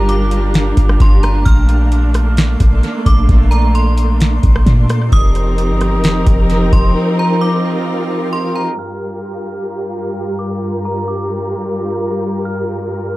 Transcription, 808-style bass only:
Already playing: G1
0.77 G1
1.00 G1
1.46 A#1
2.60 A#1
3.06 A#1
3.29 A#1
4.44 A#1
4.66 A#2
5.12 F1
5.69 G1
5.98 F1
6.27 F1
6.72 F1

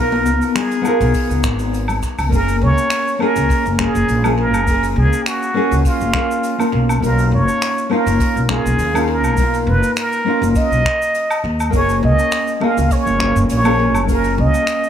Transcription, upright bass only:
Already playing: B1
0.25 C#2
1.01 B1
1.30 C#2
1.44 G#1
2.19 C#2
2.32 F#1
2.61 C#2
3.36 C#2
3.66 F#1
3.95 F#1
4.08 A#1
4.53 F#1
4.96 C#2
5.71 C#2
6.01 F#1
6.73 B1
7.02 B1
7.32 F#1
8.06 F#1
8.36 B1
8.66 B1
8.79 D#2
9.24 B1
9.67 F#1
10.42 F#1
10.71 B1
11.44 D#2
11.73 F#1
12.03 C#2
12.78 C#2
13.07 F#1
13.36 F#1
13.50 A#1
13.95 F#1
14.38 C#2

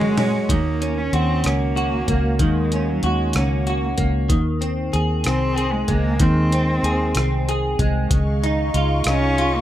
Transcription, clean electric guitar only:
Already playing: F#3 G#3 C#4 F#4
0.18 C#4
0.49 D#3
0.81 C#4
1.14 F#4
1.45 C#4
1.76 F#4
2.10 A#3
2.40 D#3
2.74 C#4
3.04 F#4
3.36 C#4
3.67 F#4
3.98 A#3
4.29 D#3
4.61 C4
4.93 G#4
5.26 C4
5.56 G#4
5.88 G#3
6.21 D#3
6.53 C4
6.84 G#4
7.16 C4
7.49 G#4
7.80 G#3
8.44 D#4
8.75 F4
9.08 D#4
9.38 F4

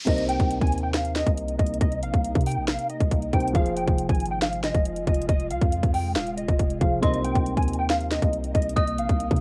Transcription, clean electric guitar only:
0.08 D#5
0.29 G5
0.61 G#5
0.83 G5
0.94 F5
1.16 D#5
1.59 D#5
1.81 D#5
2.03 F5
2.47 G5
2.68 F5
2.90 D#5
3.33 G5
3.55 F5
3.77 G5
4.09 G#5
4.31 G5
4.42 F5
4.64 D#5
5.08 D#5
5.28 D#5
5.51 F5
5.94 G5
6.15 F5
6.37 D#5
6.81 F5
7.03 D#5
7.24 G5
7.57 G#5
7.79 G5
7.89 F5
8.11 D#5
8.54 D#5
8.77 D#5
8.99 F5

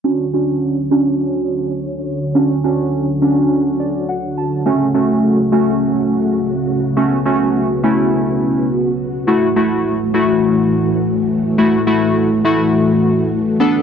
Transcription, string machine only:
0.05 D3 F#4 C#5
4.66 C#3 A3
6.97 B3
9.28 A2 E3 A3
13.61 D3 B3 A4

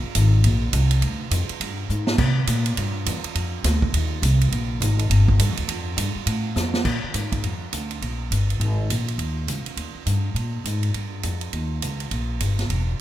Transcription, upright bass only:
0.04 muted upright bass stroke
0.15 G#1
0.44 A#1
0.73 C2
1.02 D2
1.31 F2
1.50 muted upright bass stroke
1.60 G2
1.90 G#2
2.19 C3
2.47 A#2
2.77 G2
3.06 E2
3.24 muted upright bass stroke
3.35 F2
3.64 D2
3.94 D#2
4.22 C2
4.52 A#1
4.80 G#1
5.10 G1
5.39 G2
5.49 F2
5.58 D2
5.68 F2
5.97 G2
6.15 muted upright bass stroke
6.26 A2
6.56 F2
6.85 A#2
7.04 muted upright bass stroke
7.14 G#2
7.43 F2
7.73 D2
8.02 A#1
8.31 G1
8.60 G#1
8.90 A#1
9.18 D#2
9.47 C#2
9.66 muted upright bass stroke
9.77 D#2
9.95 muted upright bass stroke
10.06 G2
10.35 A#2
10.64 G#2
10.94 G2
11.24 F2
11.53 D#2
11.82 C#2
12.11 A#1
12.40 G1
12.70 E1

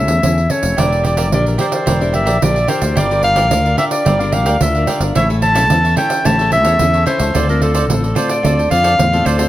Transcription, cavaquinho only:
0.77 G4 A#4 D5 E5
1.04 G4 A#4 D5 E5
1.17 G4 A#4 D5 E5
1.46 A#4 D5 E5
1.58 G4 A#4 D5 E5
1.86 G4 A#4 D5 E5
2.00 A#4 D5 E5
2.12 G4 A#4 D5 E5
2.26 G4 A#4 D5 E5
2.55 A#4 D5 E5
2.67 G4 A#4 D5 E5
2.80 A#4 D5 E5
2.95 G4 A#4 D5 F5
3.22 G4 A#4 D5 F5
3.36 G4 A#4 D5 F5
3.65 A#4 D5 F5
3.77 G4 A#4 D5 F5
4.05 G4 A#4 D5 F5
4.19 A#4 D5 F5
4.32 G4 A#4 D5 F5
4.46 G4 A#4 D5 F5
4.75 A#4 D5 F5
4.87 G4 A#4 D5 F5
5.00 A#4 D5 F5
5.15 E4 A4 C#5 E5
5.42 E4 A4 C#5 E5
5.55 E4 A4 C#5 E5
5.84 A4 C#5 E5
5.96 E4 A4 C#5 E5
6.24 E4 A4 C#5 E5
6.39 A4 C#5 E5
6.51 E4 A4 C#5 E5
6.65 E4 A4 C#5 E5
6.93 A4 C#5 E5
7.06 E4 A4 C#5 E5
7.19 A4 C#5 E5
7.34 F4 A4 C5 D5
7.61 F4 A4 C5 D5
7.74 F4 A4 C5 D5
8.03 A4 C5 D5
8.15 F4 A4 C5 D5
8.43 F4 A4 C5 D5
8.57 A4 C5 D5
8.70 F4 A4 C5 D5
8.83 F4 A4 C5 D5
9.12 A4 C5 D5
9.25 F4 A4 C5 D5
9.38 A4 C5 D5

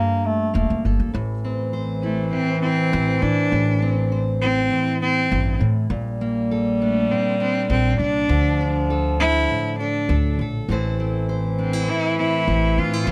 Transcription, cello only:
2.03 A3
2.33 C4
2.62 C4
3.23 D4
4.42 C4
5.02 C4
6.81 A3
7.11 C4
7.42 C4
7.71 C4
8.01 D4
9.20 E4
9.80 D4
11.60 C4
11.90 E4
12.19 E4
12.80 F4

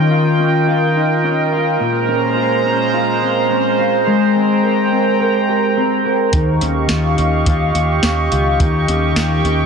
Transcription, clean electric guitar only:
Already playing: D#3 C#4 D#4 F4
0.11 F4
0.40 C#4
0.68 F4
0.96 D#4
1.24 C#4
1.52 F4
1.80 A#2
2.08 C#4
2.36 F4
2.65 C#4
2.94 F4
3.22 C4
3.50 C#4
3.79 F4
4.07 G#3
4.36 C4
4.63 A#4
4.92 C4
5.20 A#4
5.49 G4
5.77 C4
6.05 A#4
6.33 D#3
6.61 C#4
6.90 F4
7.18 C#4
7.46 F4
7.75 G4
8.04 C#4
8.32 F4
8.60 D#3
8.88 C#4
9.16 F4
9.45 C#4

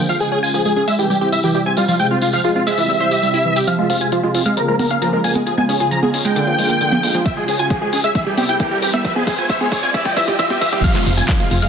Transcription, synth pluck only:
0.09 F3
0.21 G#3
0.32 C#4
0.43 F4
0.54 F3
0.65 G#3
0.76 C#4
0.88 G#3
0.99 E3
1.10 G3
1.21 C4
1.32 E4
1.44 E3
1.55 G3
1.66 C4
1.77 G3
1.88 F3
2.00 G#3
2.11 C4
2.22 F4
2.33 F3
2.44 G#3
2.56 C4
2.67 G#3
2.78 E3
2.89 G3
3.00 C5
3.11 G4
3.23 G3
3.34 E4
3.45 E3
3.56 G4
3.67 F3
3.79 G#3
3.90 C4
4.01 F4
4.12 F3
4.23 G#3
4.35 C4
4.46 G#3
4.57 F3
4.68 G#3
4.79 A#3
4.91 C#4
5.02 F3
5.13 G#3
5.24 A#3
5.35 G#3
5.47 F3
5.58 G#3
5.69 C#4
5.80 F4
5.91 F3
6.02 G#3
6.14 C#4
6.25 G#3
6.36 D3
6.47 F3
6.58 G#3
6.70 A#3
6.81 D3
6.92 F3
7.03 G#3
7.14 F3
7.26 F3
7.37 G#3
7.48 C#4
7.59 F4
7.70 F3
7.82 G#3
7.93 C#4
8.04 G#3
8.15 E3
8.26 G3
8.38 C4
8.49 E4
8.60 E3
8.71 G3
8.82 C4
8.94 G3
9.05 F3
9.16 G#3
9.27 C4
9.38 F4
9.50 F3
9.61 G#3
9.72 C4
9.83 F4
9.94 E3
10.06 G3
10.17 E3
10.28 G3
10.39 E3
10.50 G3
10.62 E3
10.73 G3
10.84 F3
10.95 G#3
11.06 C4
11.18 F4
11.29 F3
11.40 G#3
11.51 C4
11.62 G#3

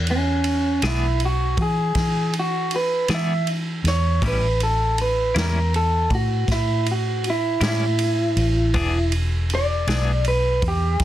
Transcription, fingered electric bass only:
Already playing: E2
0.82 B1
1.58 E3
1.96 E3
3.09 E3
3.84 E2
4.22 A1
5.36 E2
6.11 A2
6.48 A2
7.61 A2
8.36 A1
8.74 E1
9.87 B1
10.62 E2
11.00 E2

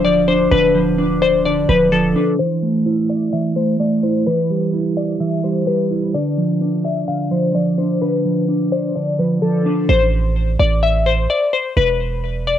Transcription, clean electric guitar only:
Already playing: D3 D4 D5
0.05 F3
0.28 D4
0.52 D3
0.75 F3
0.98 D4
1.22 D5
1.45 D3
1.69 F3
1.92 F3
2.16 D4
2.39 E3
2.62 A3
2.86 E4
3.09 E5
3.33 E3
3.56 A3
3.80 A3
4.03 E4
4.27 E3
4.50 G3
4.73 E4
4.97 E5
5.20 E3
5.43 G3
5.67 G3
5.91 E4
6.14 D3
6.38 F3
6.61 D4
6.84 D5
7.08 D3
7.31 F3
7.55 F3
7.78 D4
8.02 D3
8.25 F3
8.48 D4
8.72 D5
8.96 D3
9.19 F3
9.42 F3
9.66 D4

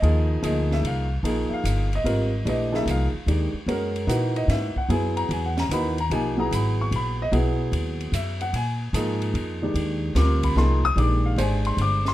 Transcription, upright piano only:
Already playing: D#5
0.02 F3 A#3 D#4 G#4
0.42 F3 A#3 D#4 G#4 D#5
0.73 E5
0.87 F5
1.24 F3 A#3 D#4 G#4
1.49 E5
1.54 F5
1.95 D#5
2.04 G3 C4 F4 A#4
2.45 E3 A3 D4 G4 D#5
2.72 F3 A#3 D#4 G#4 E5
2.85 E5
2.90 F5
3.27 D#3 G#3 D4 G4
3.68 G#3 C#4 F#4 A#4
4.07 E3 A#3 D#4 F#4 F#5
4.37 D#5
4.50 E5
4.77 F#5
4.90 F#3 B3 E4 G#4 G#5
5.17 A#5
5.31 G#5
5.46 F#5
5.60 A#5
5.71 E3 A#3 D#4 F#4 B5
6.00 A#5
6.11 F3 A#3 D#4 G4 G#5
6.37 F#3 B3 E4 G#4 A#5
6.55 B5
6.81 C#6
6.96 B5
7.22 D#5
7.32 F#3 B3 E4 G#4
8.15 E5
8.42 F#5
8.56 G#5
8.94 F3 A#3 D#4 G#4
9.62 D#3 G#3 D4 G4
10.15 G3 C4 F4 A#4 D6
10.44 B5
10.57 F3 A#3 D#4 G#4 C6
10.85 D#6
10.96 D#3 G#3 D4 G4 D6
11.26 F5
11.37 G#3 D4 G4 C5 G#5
11.67 C6
11.81 D6
12.08 C6

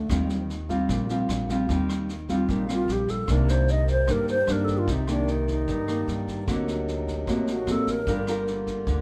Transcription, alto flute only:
Already playing: A3
2.32 F4
2.53 D#4
2.72 F4
2.92 G4
3.10 A4
3.31 A#4
3.50 C5
3.71 D#5
3.91 C5
4.12 A#4
4.30 C5
4.52 A#4
4.64 A4
4.78 F4
4.91 D#4
5.11 D4
5.31 D#4
5.50 D#4
7.50 F#4
7.71 A4
7.91 A#4

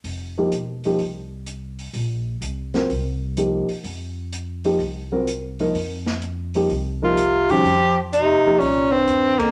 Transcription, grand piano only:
0.38 F3 A#3 D#4 G4
0.85 F3 A#3 D#4 G4
2.74 F#3 C4 F4 A#4
3.37 F3 A#3 D#4 G4
4.65 F3 A#3 D#4 G4
5.12 F#3 C4 F4 A#4
5.60 F3 A#3 D#4 A#4
6.55 F3 A#3 D#4 G4
7.02 F3 A#3 D#4 A#4
7.50 D#3 G3 C#4 F#4
8.46 F3 A#3 D#4 G4

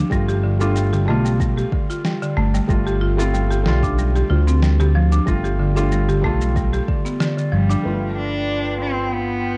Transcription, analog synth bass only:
0.11 G1
1.08 B1
2.37 G1
2.69 G1
3.66 B1
4.30 D2
5.27 G1
6.24 B1
7.53 G1
7.85 G1

